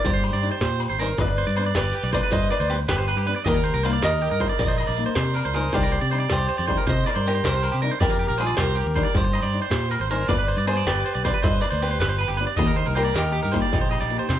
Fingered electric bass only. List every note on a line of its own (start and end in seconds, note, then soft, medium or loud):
0.05 0.29 G2 loud
0.33 0.49 G2 loud
0.61 0.85 A#2 loud
0.89 1.14 G#1 medium
1.19 1.43 G1 loud
1.47 1.71 G2 loud
1.76 1.92 G1 loud
2.03 2.20 B1 medium
2.32 2.48 G2 loud
2.60 2.84 D2 loud
2.89 3.13 G1 loud
3.16 3.33 G2 medium
3.46 3.70 D#2 medium
3.74 3.98 C2 loud
4.02 4.27 D#2 loud
4.31 4.47 G2 medium
4.59 4.84 A#1 medium
4.88 5.04 A#1 loud
5.17 5.41 C3 loud
5.45 5.69 C#2 medium
5.73 5.97 C2 loud
6.02 6.26 C3 loud
6.31 6.47 C2 loud
6.59 6.75 F2 medium
6.87 7.03 C3 loud
7.16 7.40 G2 loud
7.44 7.68 C2 loud
7.74 7.90 C3 medium
8.01 8.26 F2 loud
8.30 8.54 A#1 loud
8.57 8.82 C2 medium
8.86 9.02 D#2 medium
9.15 9.39 G2 loud
9.42 9.59 G2 loud
9.71 9.96 A#2 loud
10.00 10.24 G#1 medium
10.29 10.53 G1 medium
10.57 10.82 G2 loud
10.86 11.02 G1 medium
11.15 11.31 B1 medium
11.44 11.60 G2 loud
11.72 11.96 D2 loud
12.01 12.25 G1 loud
12.29 12.45 G1 medium
12.59 12.83 D#2 loud
12.87 13.11 C2 loud
13.14 13.39 D#2 medium
13.44 13.60 G2 medium
13.73 13.97 A#1 loud
14.01 14.18 A#1 medium
14.30 14.39 C3 loud